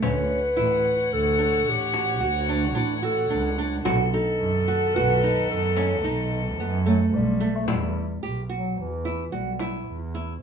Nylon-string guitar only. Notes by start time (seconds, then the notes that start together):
0.03 C#4
0.57 E4
1.38 D4
1.94 F#4
2.20 F#4
2.49 D4
2.75 D4
3.03 F#4
3.30 D4
3.58 D4
3.85 F#4
4.14 D#4
4.68 F#4
4.96 F#4
5.23 D#4
5.77 C#4
6.04 D#4
6.60 B3
6.86 A3
7.40 A3
7.68 E4
8.23 G4
8.49 F#4
9.05 E4
9.32 F#4
9.60 E4
10.15 E4